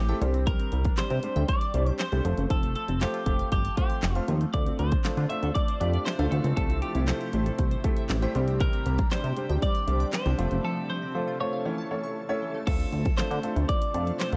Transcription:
Already playing: A1 G4
0.08 A3 C4 E4 G4 A4 G5, closed hi-hat
0.21 C2 G3 C4 D4 G4 C5, closed hi-hat
0.34 C4, closed hi-hat
0.47 G3 A#4, kick, closed hi-hat
0.59 C4, closed hi-hat
0.72 C2 G3, closed hi-hat
0.85 D4, kick, closed hi-hat
0.97 C3 G3 C4 D4 G4 C5, snare, clap, closed hi-hat
1.10 C3 G4, closed hi-hat
1.23 G3 C4 D4 G4 C5, closed hi-hat
1.36 D2 G5, closed hi-hat
1.48 G3 D5, kick, closed hi-hat
1.61 C6, closed hi-hat
1.74 C2 G3 C4 D4 G4 C5, closed hi-hat
1.86 D6, closed hi-hat
1.99 C5, snare, clap, closed hi-hat
2.12 C2 G3 C4 D4 G4 A4 G6, closed hi-hat
2.24 F1 F3 A3 C4 F4 A4 C5, closed hi-hat
2.37 F#1 A3, closed hi-hat
2.50 F1 F3 A4, kick, closed hi-hat
2.63 A3, closed hi-hat
2.76 F3 A4, closed hi-hat
2.88 F1 C4, closed hi-hat
3.01 F3 A3 C4 F4 G4 A4 C5, snare, clap, closed hi-hat
3.14 F4, closed hi-hat
3.26 F1 A3 C4 F4 A4 C5, kick, closed hi-hat
3.39 F5, closed hi-hat
3.52 G1 F3 G4, kick, closed hi-hat
3.65 A5, closed hi-hat
3.77 F3 A3 C4 F4 G4 A4 C5, kick, closed hi-hat
3.90 C6, closed hi-hat
4.03 F1, snare, clap, closed hi-hat
4.15 A3 C4 F4 A4 C5 F6, closed hi-hat
4.28 D#2 F3, closed hi-hat
4.41 A3, closed hi-hat
4.53 D2 C3 F3 A3 C4 D4 F4 A4 D5, kick, closed hi-hat
4.66 C4, closed hi-hat
4.79 D2 A3 C5, closed hi-hat
4.92 D4, kick, closed hi-hat
5.04 D3 A3 C4 D4 F4 A4, snare, clap, closed hi-hat
5.17 D3 F4, closed hi-hat
5.29 A3 C4 D4 F4 C5 E5, closed hi-hat
5.42 D2 A4, closed hi-hat
5.55 A3 D5, kick, closed hi-hat
5.68 C5, closed hi-hat
5.80 F2 A3 C4 D4 F4 G4 D5, closed hi-hat
5.93 D5, closed hi-hat
6.05 C5, snare, clap, closed hi-hat
6.19 D2 A3 C4 D4 F4 A4 F5, closed hi-hat
6.31 D2 A3 A4, closed hi-hat
6.44 C#2 C4, closed hi-hat
6.57 C2 A3 C4 E4 G4 A4, kick, closed hi-hat
6.70 C4, closed hi-hat
6.82 A3 G4, closed hi-hat
6.95 C2 E4, closed hi-hat
7.08 A3 C4 E4 G4 A4 C5, snare, clap, closed hi-hat
7.21 G4, closed hi-hat
7.33 A1 A3 C4 E4 G4 C5, closed hi-hat
7.46 A4, closed hi-hat
7.58 C2 A3, kick, closed hi-hat
7.71 C5, closed hi-hat
7.84 A3 C4 E4 G4 A4, kick, closed hi-hat
7.96 E5, closed hi-hat
8.09 A1, snare, clap, closed hi-hat
8.22 A3 C4 E4 G4 C5 G5, closed hi-hat
8.35 C2 D3 G3 C4 D4 G4 C5, closed hi-hat
8.48 C4, closed hi-hat
8.60 G3 A#4, kick, closed hi-hat
8.73 C4, closed hi-hat
8.86 C2 G3, closed hi-hat
8.98 D4, kick, closed hi-hat
9.11 C3 G3 C4 D4 G4 C5 D5, snare, clap, closed hi-hat
9.24 C3 G4, closed hi-hat
9.37 G3 C4 D4 G4 C5, closed hi-hat
9.49 D2 G5, closed hi-hat
9.62 G3 D5, kick, closed hi-hat
9.75 C6, closed hi-hat
9.87 C2 G3 C4 D4 G4 C5, closed hi-hat
10.00 D6, closed hi-hat
10.13 C5, snare, clap, closed hi-hat
10.26 C2 G3 C4 D4 G4 C5 G6, closed hi-hat
10.38 F1 F3 A3 C4 F4 A4 C5, closed hi-hat
10.51 F#1 A3, closed hi-hat
10.64 F3 A4
10.77 A3
10.89 F3 C5
11.02 C4
11.14 F3 A3 C4 F4 A4 C5
11.28 F4
11.40 A3 C4 F4 A4 C5 C#5
11.53 F5
11.65 E3 A3 C#4 E4 A4 C#5
11.78 A5
11.91 E3 A3 C#4 E4 A4 C#5
12.04 C#6
12.29 A3 C#4 E4 A4 C#5 E6
12.42 E3
12.54 A3
12.67 D2 C3 F3 A3 C4 D4 F4 A4, kick, closed hi-hat, crash
12.80 closed hi-hat
12.93 D2, closed hi-hat
13.05 kick, closed hi-hat
13.17 D3 A3 C4 D4 F4 A4 C5, snare, clap, closed hi-hat
13.31 D3, closed hi-hat
13.43 A3 C4 D4 F4 A4, closed hi-hat
13.56 D2, closed hi-hat
13.69 D5, kick, closed hi-hat
13.82 closed hi-hat
13.94 F2 A3 C4 D4 F4 A4, closed hi-hat
14.07 closed hi-hat
14.19 C5, snare, clap, closed hi-hat
14.32 D2 A3 C4 D4 F4 A4, closed hi-hat

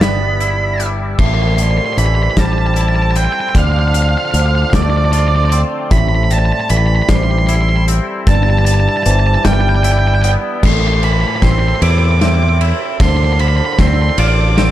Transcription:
Already playing: G1 G2 E3 G3 D4 E4 D5
0.01 B3 B5, snare, closed hi-hat
0.40 E4, closed hi-hat
0.80 G3, closed hi-hat
1.18 A1 A2 G3 C4 E4 A4 E5 C6, kick, crash
1.26 C6
1.34 C6
1.43 C6
1.49 C6
1.56 D5 C6, closed hi-hat
1.63 C6
1.71 C6
1.78 C6
1.86 C6
1.93 C6
1.97 A1 E3 B5, closed hi-hat
2.06 B5
2.15 B5
2.23 B5
2.31 B5
2.37 A1 G3 C5 A5, kick, snare, closed hi-hat
2.46 A5
2.53 A5
2.58 A5
2.67 A5
2.74 E4 A5, closed hi-hat
2.81 A5
2.88 A5
2.96 A5
3.02 A5
3.11 A5
3.15 C4 G5, closed hi-hat
3.25 G5
3.32 G5
3.40 G5
3.49 G5
3.54 D2 D3 F3 D4 D5 F5, kick, closed hi-hat
3.65 F5
3.72 F5
3.79 F5
3.88 F5
3.94 F5, closed hi-hat
4.02 F5
4.09 F5
4.17 F5
4.25 F5
4.31 D2 D3 C5 F5, closed hi-hat
4.40 F5
4.46 F5
4.55 F5
4.62 F5
4.70 D2 A3 D5 F5, kick, snare, closed hi-hat
4.74 D5
4.83 D5
4.90 D5
4.97 D5
5.05 D5
5.12 F4 D5, closed hi-hat
5.20 D5
5.28 D5
5.36 D5
5.45 D5
5.50 C4 D5, closed hi-hat
5.91 A1 A2 G3 E4 E5 B5, kick, closed hi-hat
5.98 B5
6.08 B5
6.15 B5
6.24 B5
6.30 D5 A5, closed hi-hat
6.39 A5
6.46 A5
6.52 A5
6.60 A5
6.69 A1 E3 B5, closed hi-hat
6.77 B5
6.87 B5
6.96 B5
7.02 B5
7.09 A1 G3 C5 C6, kick, snare, closed hi-hat
7.16 C6
7.23 C6
7.31 C6
7.38 C6
7.47 E4 C6, closed hi-hat
7.55 C6
7.62 C6
7.69 C6
7.76 C6
7.88 C4, closed hi-hat
8.27 G1 G2 D4 E4 D5 A5, kick, closed hi-hat
8.35 A5
8.43 A5
8.50 A5
8.59 A5
8.65 A5, closed hi-hat
8.74 A5
8.80 A5
8.89 A5
8.97 A5
9.03 G1 E3 C5 A5, closed hi-hat
9.11 A5
9.20 A5
9.27 A5
9.35 A5
9.45 G1 G3 D5 G5, kick, snare, closed hi-hat
9.53 G5
9.61 G5
9.69 G5
9.75 G5
9.83 E4 D5 G5, closed hi-hat
9.92 G5
9.99 G5
10.07 G5
10.15 G5
10.23 B3 G5, closed hi-hat
10.62 A1 A2 E4 A4 C5 G5 C6, kick, snare, crash
10.73 C6
10.80 C6
10.88 C6
10.94 C6
11.03 E3 B5, ride
11.12 B5
11.21 B5
11.27 B5
11.36 B5
11.42 A1 C4 C5 C6, kick, snare, ride
11.51 C6
11.59 C6
11.68 C6
11.76 C6
11.82 E2 E4 D6, ride
11.91 D6
11.98 D6
12.05 D6
12.11 D6
12.20 C4 E5 D6, snare, ride
12.27 D6
12.35 D6
12.43 D6
12.49 D6
12.61 E4, ride
12.99 D2 D3 D4 C5 F5 C6, kick, snare, ride
13.09 C6
13.17 C6
13.24 C6
13.33 C6
13.39 D3 C5 B5, ride
13.48 B5
13.57 B5
13.65 B5
13.73 B5
13.78 D2 C4 D5 C6, kick, snare, ride
13.87 C6
13.94 C6
14.02 C6
14.09 C6
14.18 A1 F4 D5 D6, ride
14.28 D6
14.33 D6
14.41 D6
14.49 D6
14.57 C4 D6, snare, ride
14.64 D6

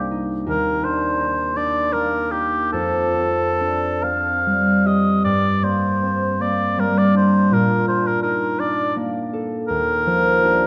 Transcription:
Already playing: C2 A#3 D4 G4
0.11 D#4
0.46 D#2 A#4
0.83 D4 C5
1.20 D#4
1.57 D4 D5
1.93 A#3 A#4
2.31 D#4 G4
2.73 F2 A4
3.14 C4
3.60 D4
4.03 C4 F5
4.46 G3
4.86 G4 D#5
5.24 G2 D5
5.63 A#3 C5
6.02 C4
6.40 A#3 D5
6.78 G3 A#4
6.98 D5
7.14 D4 C5
7.51 A#2 A#4
7.88 D4 C5
8.07 A#4
8.23 D#4 A#4
8.59 D4 D5
8.96 A#3
9.33 A4
9.68 D#2 A#4
10.06 F3
10.44 D4 G4

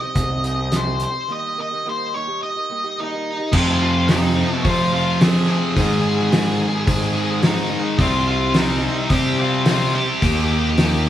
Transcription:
Already playing: C3 G3 D#5
0.01 C4 D#4 G4
0.15 C2, kick, closed hi-hat
0.30 C4 D#4 G4
0.44 G3 C4 D#4 G4, closed hi-hat
0.58 C4 D#4 G4
0.71 C3 G3 C4 D#4 G4, snare, closed hi-hat
0.76 C5
0.86 C4 D#4 G4
1.00 C5, closed hi-hat
1.14 C4 D#4 G4
1.28 D#3 G3 A#3 D#4 G4
1.32 D#5
1.57 G3 A#3 D#4 G4
1.61 D#5
1.71 A#3 D#4 G4
1.85 D#3 G3 A#3 D#4 G4
1.89 C5
2.14 G3 A#3 D#4 G4 C#5
2.27 A#3 D#4 G4
2.43 D#5
2.56 A#3 D#4 G4
2.69 G3 A#3 D#4 G4
2.84 A#3 D#4 G4
2.97 D#3 G3 A#3 D#4 G4
3.03 D#5
3.12 A#3 D#4 G4
3.39 A#3 D#4 G4
3.52 F2 C3 F3 F4, kick, crash
3.56 F5
3.80 F4 F5
4.09 F2 C3 F3 D#4 D#5, snare, open hi-hat
4.36 F2 C3 F3
4.55 C#5
4.65 F2 C3 F3 F4 F5, kick, open hi-hat
4.93 F2 C3 F3 F4 F5
5.21 F2 C3 F3 G#4 G#5, snare, open hi-hat
5.47 F2 C3 F3 G#4
5.52 G#5
5.75 G#2 D#3 G#3, kick, open hi-hat
6.19 snare
6.32 G#2 D#3 G#3, snare, open hi-hat
6.61 G#2 D#3 G#3
6.87 G#2 D#3 G#3, kick, open hi-hat
7.14 G#2 D#3 G#3
7.43 G#2 D#3 G#3 D#4 D#5, snare, open hi-hat
7.71 G#2 D#3 G#3
7.99 C2 C3 G3 C4 F4 F5, kick, open hi-hat
8.30 F4 F5
8.54 C3 G3 C4 D#4 D#5, snare, open hi-hat
8.83 C3 G3 C4
9.10 C3 G3 C4 G4 G5, kick, open hi-hat
9.38 C3 G3 C4 F4 F5
9.66 C3 G3 C4 F4 F5, snare, open hi-hat
9.95 C3 G3 C4 G4 G5
10.22 D#2 D#3 A#3 D#4, kick, open hi-hat
10.64 snare
10.78 D#3 A#3 D#4, snare, open hi-hat

